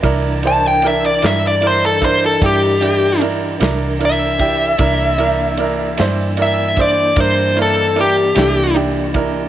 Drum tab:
RD |xxxxxxxxxxxx|xxxxxxxxxxxx|
SD |---o-----o--|---o-----o--|
BD |o----oo----o|o----oo----o|